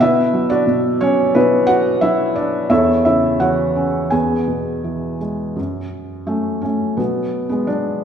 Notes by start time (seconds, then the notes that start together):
0.00 B2 E4 B4 E5
0.34 F#3
0.50 D4 F#4 D5
0.67 B2
1.01 F#3 C#4 C#5
1.35 B2 B3 E4 F#4 B4
1.67 F#4 F#5
2.01 F#3 E4 E5
2.36 D4 D5
2.70 E2 E4 A4 C#5 E5
3.05 C#3 E4 E5
3.40 E3 F#4 C#5 F#5
3.76 C#4
4.10 E2 G#4 B4 G#5
4.48 B2
4.84 E3
5.21 G#3
5.56 F#2
6.26 F#3 A3 C#4
6.62 A3 C#4
6.97 B2 F#3 B3
7.49 G#3 B3
7.67 F#3 B3 D4